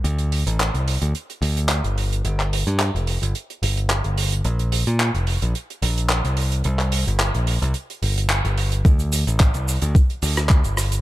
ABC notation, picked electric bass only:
X:1
M:4/4
L:1/16
Q:"Swing 16ths" 1/4=109
K:Dphr
V:1 name="Picked electric bass" clef=bass
D,,3 A,,,2 C,,2 D,, z2 D,,3 G,,,3 | G,,,3 G,,2 F,,,2 G,,, z2 G,,,3 G,,,3 | B,,,3 B,,2 F,,,2 B,,, z2 B,,,3 C,,3 | C,,3 G,,,2 B,,,2 C,, z2 G,,,3 G,,,3 |
D,,3 A,,,2 C,,2 D,, z2 D,,3 G,,,3 |]